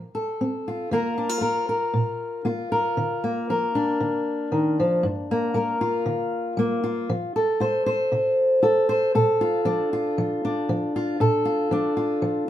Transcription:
0, 0, Header, 1, 2, 480
1, 0, Start_track
1, 0, Key_signature, -2, "major"
1, 0, Tempo, 513699
1, 860, Time_signature, 4, 2, 24, 8
1, 11676, End_track
2, 0, Start_track
2, 0, Title_t, "Steel-string acoustic guitar"
2, 0, Program_c, 0, 25
2, 0, Note_on_c, 0, 53, 57
2, 138, Note_on_c, 0, 69, 47
2, 329, Note_off_c, 0, 53, 0
2, 382, Note_on_c, 0, 60, 47
2, 633, Note_on_c, 0, 65, 45
2, 813, Note_off_c, 0, 60, 0
2, 831, Note_off_c, 0, 69, 0
2, 838, Note_off_c, 0, 65, 0
2, 854, Note_on_c, 0, 51, 57
2, 865, Note_on_c, 0, 58, 50
2, 867, Note_on_c, 0, 65, 51
2, 875, Note_on_c, 0, 70, 51
2, 1096, Note_off_c, 0, 65, 0
2, 1099, Note_on_c, 0, 62, 46
2, 1208, Note_off_c, 0, 62, 0
2, 1208, Note_on_c, 0, 65, 44
2, 1290, Note_off_c, 0, 51, 0
2, 1314, Note_off_c, 0, 58, 0
2, 1317, Note_on_c, 0, 58, 50
2, 1325, Note_off_c, 0, 70, 0
2, 1328, Note_on_c, 0, 70, 51
2, 1574, Note_off_c, 0, 70, 0
2, 1578, Note_on_c, 0, 70, 54
2, 1762, Note_off_c, 0, 58, 0
2, 1808, Note_on_c, 0, 46, 55
2, 2248, Note_off_c, 0, 46, 0
2, 2283, Note_off_c, 0, 65, 0
2, 2287, Note_on_c, 0, 58, 51
2, 2294, Note_on_c, 0, 65, 51
2, 2536, Note_off_c, 0, 70, 0
2, 2540, Note_on_c, 0, 70, 59
2, 2727, Note_off_c, 0, 58, 0
2, 2776, Note_on_c, 0, 50, 64
2, 3025, Note_on_c, 0, 58, 48
2, 3212, Note_off_c, 0, 50, 0
2, 3268, Note_off_c, 0, 70, 0
2, 3268, Note_on_c, 0, 53, 52
2, 3272, Note_on_c, 0, 70, 53
2, 3502, Note_off_c, 0, 65, 0
2, 3505, Note_on_c, 0, 62, 52
2, 3698, Note_off_c, 0, 53, 0
2, 3742, Note_on_c, 0, 50, 54
2, 4175, Note_off_c, 0, 50, 0
2, 4221, Note_on_c, 0, 51, 55
2, 4463, Note_off_c, 0, 51, 0
2, 4481, Note_on_c, 0, 53, 60
2, 4679, Note_off_c, 0, 70, 0
2, 4702, Note_on_c, 0, 43, 71
2, 4713, Note_off_c, 0, 53, 0
2, 4945, Note_off_c, 0, 58, 0
2, 4963, Note_on_c, 0, 58, 53
2, 5135, Note_off_c, 0, 43, 0
2, 5178, Note_on_c, 0, 55, 59
2, 5186, Note_on_c, 0, 70, 49
2, 5425, Note_off_c, 0, 62, 0
2, 5429, Note_on_c, 0, 65, 54
2, 5613, Note_off_c, 0, 55, 0
2, 5660, Note_on_c, 0, 50, 58
2, 6094, Note_off_c, 0, 50, 0
2, 6139, Note_on_c, 0, 55, 59
2, 6143, Note_off_c, 0, 58, 0
2, 6155, Note_on_c, 0, 58, 57
2, 6384, Note_off_c, 0, 65, 0
2, 6388, Note_on_c, 0, 65, 54
2, 6574, Note_off_c, 0, 55, 0
2, 6596, Note_off_c, 0, 70, 0
2, 6629, Note_off_c, 0, 58, 0
2, 6630, Note_on_c, 0, 53, 69
2, 6872, Note_off_c, 0, 65, 0
2, 6876, Note_on_c, 0, 69, 57
2, 7059, Note_off_c, 0, 53, 0
2, 7104, Note_on_c, 0, 65, 60
2, 7113, Note_on_c, 0, 72, 59
2, 7337, Note_off_c, 0, 72, 0
2, 7348, Note_on_c, 0, 72, 61
2, 7536, Note_off_c, 0, 65, 0
2, 7585, Note_on_c, 0, 48, 57
2, 8016, Note_off_c, 0, 48, 0
2, 8052, Note_off_c, 0, 69, 0
2, 8060, Note_on_c, 0, 65, 60
2, 8065, Note_on_c, 0, 69, 63
2, 8296, Note_off_c, 0, 72, 0
2, 8307, Note_on_c, 0, 72, 68
2, 8493, Note_off_c, 0, 65, 0
2, 8514, Note_off_c, 0, 69, 0
2, 8516, Note_off_c, 0, 72, 0
2, 8548, Note_on_c, 0, 46, 65
2, 8552, Note_on_c, 0, 69, 64
2, 8792, Note_on_c, 0, 65, 55
2, 8976, Note_off_c, 0, 46, 0
2, 9018, Note_on_c, 0, 53, 62
2, 9022, Note_on_c, 0, 62, 53
2, 9274, Note_off_c, 0, 65, 0
2, 9277, Note_on_c, 0, 65, 54
2, 9451, Note_off_c, 0, 53, 0
2, 9512, Note_on_c, 0, 53, 67
2, 9758, Note_off_c, 0, 62, 0
2, 9762, Note_on_c, 0, 62, 55
2, 9938, Note_off_c, 0, 53, 0
2, 9990, Note_on_c, 0, 53, 61
2, 10227, Note_off_c, 0, 65, 0
2, 10240, Note_on_c, 0, 65, 55
2, 10416, Note_off_c, 0, 53, 0
2, 10435, Note_off_c, 0, 69, 0
2, 10440, Note_off_c, 0, 65, 0
2, 10467, Note_on_c, 0, 46, 72
2, 10474, Note_on_c, 0, 69, 65
2, 10702, Note_on_c, 0, 65, 54
2, 10893, Note_off_c, 0, 46, 0
2, 10943, Note_on_c, 0, 53, 62
2, 10951, Note_off_c, 0, 62, 0
2, 10954, Note_on_c, 0, 62, 55
2, 11171, Note_off_c, 0, 65, 0
2, 11183, Note_on_c, 0, 65, 57
2, 11371, Note_off_c, 0, 53, 0
2, 11418, Note_on_c, 0, 53, 60
2, 11657, Note_off_c, 0, 62, 0
2, 11676, Note_off_c, 0, 53, 0
2, 11676, Note_off_c, 0, 65, 0
2, 11676, Note_off_c, 0, 69, 0
2, 11676, End_track
0, 0, End_of_file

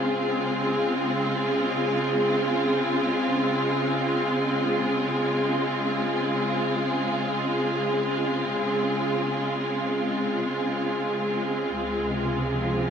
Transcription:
0, 0, Header, 1, 2, 480
1, 0, Start_track
1, 0, Key_signature, -5, "major"
1, 0, Tempo, 500000
1, 12384, End_track
2, 0, Start_track
2, 0, Title_t, "String section"
2, 0, Program_c, 0, 48
2, 0, Note_on_c, 0, 49, 58
2, 0, Note_on_c, 0, 56, 65
2, 0, Note_on_c, 0, 60, 65
2, 0, Note_on_c, 0, 65, 68
2, 0, Note_on_c, 0, 68, 59
2, 11303, Note_on_c, 0, 37, 74
2, 11306, Note_off_c, 0, 49, 0
2, 11535, Note_on_c, 0, 48, 76
2, 12012, Note_on_c, 0, 53, 71
2, 12384, Note_off_c, 0, 37, 0
2, 12384, Note_off_c, 0, 48, 0
2, 12384, Note_off_c, 0, 53, 0
2, 12384, Note_off_c, 0, 56, 0
2, 12384, Note_off_c, 0, 60, 0
2, 12384, Note_off_c, 0, 65, 0
2, 12384, Note_off_c, 0, 68, 0
2, 12384, End_track
0, 0, End_of_file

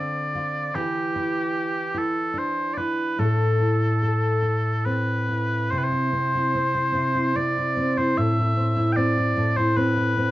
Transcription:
0, 0, Header, 1, 3, 480
1, 0, Start_track
1, 0, Key_signature, 0, "minor"
1, 0, Tempo, 807537
1, 448, Time_signature, 3, 2, 24, 8
1, 1890, Tempo, 836820
1, 4290, Tempo, 804290
1, 6048, End_track
2, 0, Start_track
2, 0, Title_t, "Bagpipes"
2, 0, Program_c, 0, 109
2, 0, Note_on_c, 0, 74, 73
2, 446, Note_off_c, 0, 74, 0
2, 446, Note_on_c, 0, 67, 70
2, 1176, Note_off_c, 0, 67, 0
2, 1176, Note_on_c, 0, 69, 67
2, 1417, Note_off_c, 0, 69, 0
2, 1417, Note_on_c, 0, 72, 70
2, 1628, Note_off_c, 0, 72, 0
2, 1628, Note_on_c, 0, 74, 68
2, 1650, Note_off_c, 0, 74, 0
2, 1650, Note_on_c, 0, 71, 68
2, 1898, Note_off_c, 0, 71, 0
2, 1898, Note_on_c, 0, 69, 64
2, 2850, Note_off_c, 0, 69, 0
2, 2850, Note_on_c, 0, 71, 71
2, 3339, Note_off_c, 0, 71, 0
2, 3339, Note_on_c, 0, 72, 73
2, 3382, Note_off_c, 0, 72, 0
2, 3382, Note_on_c, 0, 71, 61
2, 3413, Note_off_c, 0, 71, 0
2, 3413, Note_on_c, 0, 72, 75
2, 4289, Note_off_c, 0, 72, 0
2, 4289, Note_on_c, 0, 74, 85
2, 4656, Note_off_c, 0, 74, 0
2, 4656, Note_on_c, 0, 72, 81
2, 4774, Note_off_c, 0, 72, 0
2, 4774, Note_on_c, 0, 76, 86
2, 5222, Note_off_c, 0, 76, 0
2, 5222, Note_on_c, 0, 79, 91
2, 5244, Note_off_c, 0, 79, 0
2, 5244, Note_on_c, 0, 74, 91
2, 5605, Note_off_c, 0, 74, 0
2, 5605, Note_on_c, 0, 72, 89
2, 5724, Note_off_c, 0, 72, 0
2, 5724, Note_on_c, 0, 71, 92
2, 6048, Note_off_c, 0, 71, 0
2, 6048, End_track
3, 0, Start_track
3, 0, Title_t, "Nylon-string guitar"
3, 0, Program_c, 1, 24
3, 0, Note_on_c, 1, 50, 60
3, 0, Note_on_c, 1, 60, 48
3, 0, Note_on_c, 1, 65, 47
3, 0, Note_on_c, 1, 72, 57
3, 201, Note_off_c, 1, 65, 0
3, 208, Note_on_c, 1, 65, 49
3, 443, Note_off_c, 1, 50, 0
3, 445, Note_on_c, 1, 52, 64
3, 447, Note_off_c, 1, 72, 0
3, 449, Note_on_c, 1, 71, 52
3, 494, Note_off_c, 1, 60, 0
3, 495, Note_off_c, 1, 65, 0
3, 688, Note_on_c, 1, 64, 48
3, 924, Note_off_c, 1, 71, 0
3, 1153, Note_off_c, 1, 64, 0
3, 1155, Note_on_c, 1, 64, 49
3, 1389, Note_on_c, 1, 62, 48
3, 1645, Note_off_c, 1, 64, 0
3, 1648, Note_on_c, 1, 64, 48
3, 1894, Note_on_c, 1, 45, 63
3, 1897, Note_on_c, 1, 69, 58
3, 1931, Note_off_c, 1, 62, 0
3, 2127, Note_off_c, 1, 64, 0
3, 2129, Note_on_c, 1, 64, 45
3, 2366, Note_off_c, 1, 69, 0
3, 2373, Note_on_c, 1, 69, 49
3, 2503, Note_off_c, 1, 52, 0
3, 2601, Note_off_c, 1, 64, 0
3, 2603, Note_on_c, 1, 64, 40
3, 2852, Note_on_c, 1, 60, 46
3, 3097, Note_off_c, 1, 64, 0
3, 3099, Note_on_c, 1, 64, 45
3, 3335, Note_off_c, 1, 45, 0
3, 3349, Note_on_c, 1, 48, 62
3, 3386, Note_off_c, 1, 69, 0
3, 3458, Note_off_c, 1, 64, 0
3, 3579, Note_off_c, 1, 60, 0
3, 3582, Note_on_c, 1, 60, 48
3, 3709, Note_on_c, 1, 64, 45
3, 3820, Note_off_c, 1, 60, 0
3, 3822, Note_on_c, 1, 60, 49
3, 3933, Note_off_c, 1, 64, 0
3, 3935, Note_on_c, 1, 64, 48
3, 4044, Note_off_c, 1, 48, 0
3, 4051, Note_on_c, 1, 48, 66
3, 4164, Note_off_c, 1, 64, 0
3, 4167, Note_on_c, 1, 64, 46
3, 4284, Note_off_c, 1, 60, 0
3, 4286, Note_on_c, 1, 60, 51
3, 4416, Note_off_c, 1, 64, 0
3, 4418, Note_on_c, 1, 64, 48
3, 4529, Note_off_c, 1, 60, 0
3, 4532, Note_on_c, 1, 60, 54
3, 4653, Note_off_c, 1, 64, 0
3, 4656, Note_on_c, 1, 64, 50
3, 4775, Note_off_c, 1, 48, 0
3, 4777, Note_on_c, 1, 45, 68
3, 4901, Note_off_c, 1, 64, 0
3, 4904, Note_on_c, 1, 64, 50
3, 5006, Note_off_c, 1, 60, 0
3, 5008, Note_on_c, 1, 60, 52
3, 5120, Note_off_c, 1, 64, 0
3, 5127, Note_on_c, 1, 64, 51
3, 5245, Note_off_c, 1, 60, 0
3, 5248, Note_on_c, 1, 60, 57
3, 5364, Note_off_c, 1, 64, 0
3, 5371, Note_on_c, 1, 64, 51
3, 5478, Note_off_c, 1, 45, 0
3, 5485, Note_on_c, 1, 45, 66
3, 5601, Note_off_c, 1, 64, 0
3, 5609, Note_on_c, 1, 64, 52
3, 5723, Note_off_c, 1, 60, 0
3, 5725, Note_on_c, 1, 60, 54
3, 5838, Note_off_c, 1, 64, 0
3, 5845, Note_on_c, 1, 64, 53
3, 5964, Note_off_c, 1, 60, 0
3, 5967, Note_on_c, 1, 60, 59
3, 6048, Note_off_c, 1, 45, 0
3, 6048, Note_off_c, 1, 60, 0
3, 6048, Note_off_c, 1, 64, 0
3, 6048, End_track
0, 0, End_of_file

